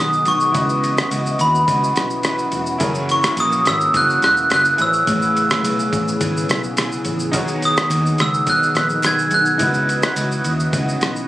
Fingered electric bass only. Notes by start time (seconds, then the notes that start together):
0.00 B1
0.27 B1
0.55 C#2
1.11 C#2
1.40 D#2
1.68 C#2
1.96 B1
2.53 E1
2.81 F#1
3.37 A#1
3.66 G#1
3.94 F#1
4.22 E1
4.51 F#1
4.79 A1
5.07 A1
5.63 B1
5.93 A1
6.21 G#1
6.49 B1
7.05 A1
7.34 B1
7.90 D#2
8.19 C#2
8.47 B1
8.75 A#1
9.03 B1
9.31 B1
9.60 C#2
10.16 C#2
10.45 D#2
10.73 C#2
11.01 B1